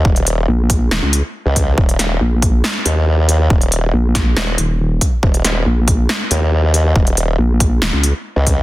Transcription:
0.05 D#1, kick
0.16 closed hi-hat
0.27 closed hi-hat
0.48 A#1
0.70 kick, closed hi-hat
0.91 D#1, snare
1.02 C#2
1.13 closed hi-hat
1.46 C#2
1.56 kick, closed hi-hat
1.78 D#1, kick
1.89 closed hi-hat
1.99 snare, closed hi-hat
2.21 A#1
2.42 kick, closed hi-hat
2.64 snare
2.86 D#2, closed hi-hat
3.29 closed hi-hat
3.50 D#1, kick
3.61 closed hi-hat
3.72 closed hi-hat
3.93 A#1
4.15 kick, snare, closed hi-hat
4.37 D#1, snare
4.58 D#1, closed hi-hat
5.01 kick, closed hi-hat
5.23 D#1, kick
5.34 closed hi-hat
5.45 snare, closed hi-hat
5.66 A#1
5.88 kick, closed hi-hat
6.09 snare
6.31 D#2, closed hi-hat
6.74 closed hi-hat
6.96 D#1, kick
7.07 closed hi-hat
7.17 closed hi-hat
7.39 A#1
7.60 kick, closed hi-hat
7.82 D#1, snare
7.93 C#2
8.03 closed hi-hat
8.36 C#2
8.47 kick, closed hi-hat

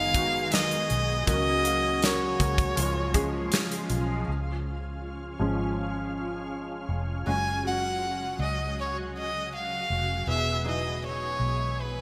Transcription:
Already playing: F#1 D#3 F#3 G#3 B3 D#4 F4 G#4 F5
0.14 G#3 B3 D#4 F#4, kick, closed hi-hat
0.51 D#3 F#3 B3 D#4 G#4 D#5, snare, closed hi-hat
0.71 closed hi-hat
0.89 B1 B3 D#4 G#4, closed hi-hat
1.26 C#2 C#3 F#3 A#3 C#4 F#4 A#4 D#5, kick, closed hi-hat
1.64 F#3 A#3 C#4 F#4 A#4 F5, closed hi-hat
2.02 C#3 F#3 C#4 F#4 A#4 C#5, snare, closed hi-hat
2.40 C#2 C#4 F#4 A#4, kick, closed hi-hat
2.58 kick, closed hi-hat
2.75 C#2 G#2 F3 G#3 C#4 F4 G#4, closed hi-hat
3.14 F3 G#3 C#4 G#4, kick, closed hi-hat
3.52 C#3 G#3 C#4 F4 G#4, snare, closed hi-hat
3.72 closed hi-hat
3.89 B1 C#4 F4 G#4, closed hi-hat
4.27 C#2 C#4 F4 G#4 F5
5.39 G#1 F3 G#3 C#4
6.89 F1
7.26 F#1 C#3 F#3 G#3 C#4 F#4 G#5
7.64 F#3 G#3 C#4 F#4 F#5
8.39 C#2 D#5
8.80 C#5
9.18 D#5
9.55 F5
9.90 F1
10.26 E1 B2 E3 G#3 B3 E4 G#4 E5
10.64 B3 D#4 E4 G#4 D#5
11.07 C#5
11.40 B1
11.81 B4

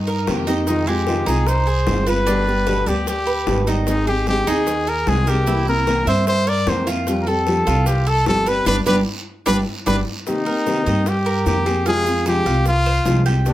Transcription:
Already playing: G2 D#4
0.07 A#4, high bongo, maracas
0.27 F2 C3 D#3 A#3 C4 G4, high bongo, low bongo, short guiro, maracas
0.47 A#3 C4 D#4 G4, high bongo, short guiro, maracas
0.67 C3 D#3 G#3 C4 D#4 F4, high bongo, long guiro, maracas
0.87 G#3 C4 F4 G4, high bongo, maracas
1.07 C3 D#3 G#3 C4 F4, high bongo, short guiro, maracas
1.26 C2 G#3 C4 D#4 F4 G#4, high bongo, short guiro, maracas
1.47 C5, muted nylon-string guitar stroke, high bongo, long guiro, maracas
1.67 G#4, maracas
1.87 G1 C3 D#3 G#3 C4 F4, high bongo, low bongo, short guiro, maracas
2.07 G#3 C4 F4 B4, high bongo, short guiro, maracas
2.27 B2 D3 G3 B3 D4 G4, high bongo, long guiro, maracas
2.47 G3 B3 G4, maracas
2.67 B2 D3 G3 B3 G4 B4, high bongo, short guiro, maracas
2.86 D2 G3 B3 G4 D5, high bongo, short guiro, maracas
3.07 G4, muted nylon-string guitar stroke, high bongo, long guiro, maracas
3.27 B4, high bongo, maracas
3.46 G#1 B2 D3 G3 B3 G4, high bongo, low bongo, short guiro, maracas
3.67 G3 B3 D#4 G4, high bongo, short guiro, maracas
3.87 D#3 G#3 C4 D#4 G#4, high bongo, long guiro, maracas
4.06 C4 D#4 G4 G#4, high bongo, maracas
4.27 D#3 G#3 C4 D#4 G4 G#4, high bongo, short guiro, maracas
4.46 D#2 C4 D#4 G#4, high bongo, short guiro, maracas
4.66 muted nylon-string guitar stroke, high bongo, long guiro, maracas
4.87 G#4 A#4, maracas
5.06 C2 D#3 G#3 C4 D#4 G#4, high bongo, low bongo, short guiro, maracas
5.26 C4 D#4 G4 G#4 A#4, high bongo, short guiro, maracas
5.46 C3 E3 A#3 C4 E4, high bongo, long guiro, maracas
5.67 A#3 C4 A#4, maracas
5.86 C3 E3 A#3 C4 E4 A#4, high bongo, short guiro, maracas
6.06 G2 A#3 C4 E4 C5 E5, high bongo, short guiro, maracas
6.27 C5, muted nylon-string guitar stroke, high bongo, long guiro, maracas
6.47 A#4 D5, high bongo, maracas
6.66 F2 C3 E3 A#3 C4 E4 C5, high bongo, low bongo, short guiro, maracas
6.87 A#3 C4 E4 F4, high bongo, short guiro, maracas
7.07 F3 G3 C4 G4, high bongo, long guiro, maracas
7.21 A#4
7.27 G3 C4 G4 A4, high bongo, maracas
7.47 F3 G3 C4 G4, high bongo, short guiro, maracas
7.66 C2 G3 C4 F4 G4, high bongo, short guiro, maracas
7.86 G4, muted nylon-string guitar stroke, high bongo, long guiro, maracas
8.07 A4, maracas
8.26 G1 F3 G3 C4 G4 A4, high bongo, low bongo, short guiro, maracas
8.46 G3 C4 G4 B4, high bongo, short guiro, maracas
8.66 G1 G3 B3 D4 G4 B4, low bongo, long guiro, maracas
8.86 G1 G3 B3 D4 G4 B4, low bongo, long guiro, maracas
9.46 G1 G3 B3 D4 G4 B4, low bongo, long guiro, maracas
9.86 G1 G3 B3 D4 G4 B4, low bongo, long guiro, maracas
10.27 C3 D#3 A#3 C4 D#4 G4, high bongo, long guiro, maracas
10.46 A#3 C4 G4 A#4, high bongo
10.66 C3 D#3 A#3 C4 G4, high bongo, short guiro, maracas
10.86 G2 A#3 C4 G4 D#5, high bongo, short guiro, maracas
11.06 G4, muted nylon-string guitar stroke, high bongo, long guiro, maracas
11.26 A#4
11.46 F2 C3 D#3 A#3 C4 G4, high bongo, low bongo, short guiro, maracas
11.66 A#3 C4 G4 G#4, high bongo, short guiro, maracas
11.86 C3 F3 G#3 C4 F4 G#4, high bongo, long guiro, maracas
12.06 G#3 C4 F4, high bongo, maracas
12.26 C3 F3 G#3 C4 F4 G4 G#4, high bongo, short guiro, maracas
12.45 C2 G#3 C4 F4 F5, high bongo, short guiro, maracas
12.66 F4, muted nylon-string guitar stroke, high bongo, long guiro, maracas
12.86 C5
13.05 C2 C3 F3 G#3 C4 F4, high bongo, low bongo, short guiro, maracas
13.26 G#3 C4 F4 G4, high bongo, short guiro, maracas
13.45 C3 D#3 A#3 C4 D#4 G4, high bongo, long guiro, maracas

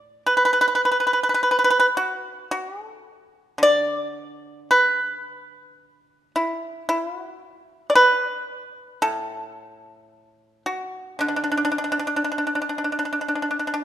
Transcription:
Already playing: A2 D5
0.27 B4
0.37 B4
0.45 B4
0.53 B4
0.61 B4
0.75 B4
0.85 B4
0.92 B4
1.00 B4
1.07 B4
1.13 B4
1.23 B4
1.29 B4
1.34 B4
1.43 B4
1.51 B4
1.59 B4
1.64 B4
1.70 B4
1.80 B4
1.97 F#4
2.51 F#4
2.84 A4
3.58 D3
3.63 D5
4.71 B4
6.36 E4
6.89 E4
7.07 F4
7.18 F#4
7.90 D5
7.95 B4
9.02 A2 A4
10.66 F#4
11.19 D3 D4
11.28 D4
11.36 D4
11.44 D4
11.52 D4
11.57 D4
11.65 D4
11.72 D4
11.78 D4
11.84 D4
11.92 D4
11.99 D4
12.07 D4
12.16 D4
12.24 D4
12.32 D4
12.38 D4
12.47 D4
12.55 D4
12.62 D4
12.69 D4
12.78 D4
12.84 D4
12.92 D4
12.99 D4
13.05 D4
13.13 D4
13.21 D4
13.28 D4
13.35 D4
13.42 D4
13.51 D4
13.59 D4
13.67 D4
13.74 D4

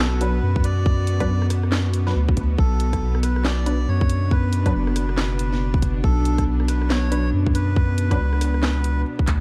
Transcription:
Already playing: B1 B2 B3 F#4
0.00 A4
0.21 F#3 D4 B4, closed hi-hat
0.42 F#2
0.56 kick
0.64 D5, closed hi-hat
0.86 kick
1.07 closed hi-hat
1.20 F#3 D4 B4, kick, cross-stick, closed hi-hat
1.29 F#2
1.42 cross-stick
1.50 cross-stick, open hi-hat
1.63 cross-stick
1.72 snare, clap
1.93 closed hi-hat
2.07 F#3 D4 B4, snare
2.15 D2
2.28 kick
2.37 kick, closed hi-hat
2.58 B1 D4 A4, kick
2.80 closed hi-hat
2.93 kick, cross-stick, closed hi-hat
3.02 B1
3.15 cross-stick
3.23 B4, cross-stick, open hi-hat
3.36 cross-stick
3.45 D5, snare, clap
3.66 F#3 D4 B4, closed hi-hat
3.88 F#2 C#5
4.01 kick
4.09 closed hi-hat
4.31 B4, kick
4.53 closed hi-hat
4.66 F#3 D4 B4, kick, cross-stick, closed hi-hat
4.74 F#1 B4
4.87 cross-stick
4.96 cross-stick, open hi-hat
5.09 cross-stick
5.18 snare, clap
5.39 closed hi-hat
5.52 snare
5.74 kick
5.82 kick, closed hi-hat
6.04 B1 A4, kick
6.25 closed hi-hat
6.38 kick, cross-stick, closed hi-hat
6.47 B1
6.60 cross-stick
6.68 B4, cross-stick, open hi-hat
6.82 cross-stick
6.90 C#5, snare, clap
7.12 F#3 D4 B4, closed hi-hat
7.33 F#2
7.46 kick
7.54 B4, closed hi-hat
7.76 kick
7.98 closed hi-hat
8.11 F#3 D4 B4, kick, cross-stick, closed hi-hat
8.19 C#2
8.33 cross-stick
8.41 cross-stick, open hi-hat
8.54 cross-stick
8.63 snare, clap
8.84 closed hi-hat
9.19 kick
9.27 D2, kick, clap, closed hi-hat

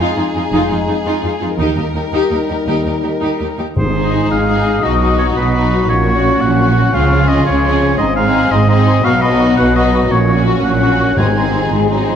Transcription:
Already playing: G#3 D#4 G#4
0.00 D#4 F4
0.16 F2 D#4 F4
0.34 F2 D#4 F4
0.52 F1 F2 D#4 F4
0.70 F2 D#4 F4
0.87 F2 D#4 F4
1.05 F2 D#4 F4
1.23 F2 D#4 F4
1.41 F2 D#4 F4
1.59 D#2 G3 D#4 G4 A#4
1.77 D#2 D#4 G4
1.94 D#2 D#4 G4
2.12 D#2 D#4 G4
2.31 D#2 D#4 G4
2.49 D#2 D#4 G4
2.67 D#2 D#4 G4
2.85 D#2 D#4 G4
3.03 D#2 D#4 G4
3.21 D#2 D#4 G4
3.40 D#2 D#4 G4
3.58 D#2 D#4 G4
3.76 G#1 G#2 G#3 D#4 G#4 C5 D#6
3.95 D#4 G#4
4.29 G#1 G#2 F5
4.47 D#4 G#4
4.83 B1 B2 F#3 D#4 F#4 D#5
4.99 D#4 F#4
5.19 C#5
5.36 B1 B2 F#3 D#4 B4
5.54 D#4 F#4
5.88 A#1 A#2 F#3 C#4 C#5 C#6
6.06 C#4 F#4
6.41 A#1 A#2 F#3 C#4 F#5
6.59 C#4 F#4
6.93 C#2 C#3 F3 C#4 F4 G#4 F5
7.11 C#4 F4 G#4
7.28 D#5
7.46 C#2 C#3 F3 C#4 C#5
7.63 C#4 F4 G#4
7.97 G#1 G#2 G#3 C4 D#4 D#5 C6
8.16 C4 D#4 G#4 F5 C6
8.33 D#4 C6
8.51 G#1 G#2 G#3 C4 D#4 D#5 C6
8.68 C4 D#4 G#4 D#5 C6
8.86 D#4 C6
9.02 B1 B2 F#3 B3 D#4 F#4 F5 B5
9.21 B3 D#4 F#4 D#5 B5
9.38 F#4 B5
9.56 B1 B2 F#3 B3 F#4 F#5 B5
9.74 B3 D#4 F#4 D#5 B5
9.92 F#4 B5
10.10 A#1 A#2 F#3 C#4 F#4 C#5 C#6
10.27 C#4 F#4 C#6
10.46 F#4 C#6
10.63 A#1 A#2 F#3 C#4 F#4 F#5 C#6
10.81 C#4 F#4 C#6
11.00 F#4 C#6
11.16 G#1 G#2 D#3 C4 D#4 G#4 G#5 C6
11.36 C4 D#4 G#4 C6
11.53 D#4 C6
11.71 G#1 G#2 G#3 D#4 C6
11.89 F#3 C4 D#4 G#4 C6
12.08 F3 D#4 C6

